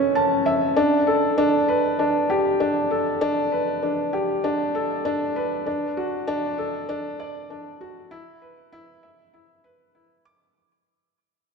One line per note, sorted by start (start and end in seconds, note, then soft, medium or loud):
0.00 0.79 C#4 loud
0.00 0.79 A4 medium
0.00 0.79 B4 medium
0.15 0.45 A5 medium
0.46 0.75 E5 medium
0.76 1.06 D4 loud
1.07 1.36 A4 medium
1.38 1.55 D4 loud
1.68 1.98 B4 medium
1.99 2.28 D4 medium
2.30 2.59 G4 medium
2.60 2.89 D4 medium
2.91 3.20 A4 medium
3.21 3.39 D4 loud
3.52 3.81 B4 medium
3.83 4.12 D4 medium
4.13 4.42 G4 medium
4.44 4.73 D4 medium
4.75 5.04 A4 medium
5.05 5.23 D4 loud
5.36 5.65 B4 medium
5.66 5.96 D4 medium
5.97 6.26 F#4 medium
6.28 6.57 D4 loud
6.58 6.87 A4 medium
6.89 7.06 D4 loud
7.20 7.49 D5 medium
7.50 7.79 D4 medium
7.81 8.10 F#4 medium
8.11 8.40 E4 loud
8.42 8.71 B4 medium
8.72 8.90 E4 loud
9.03 9.32 E5 medium
9.34 9.63 E4 medium
9.64 9.93 B4 medium
9.95 10.24 E4 medium
10.25 10.43 D6 loud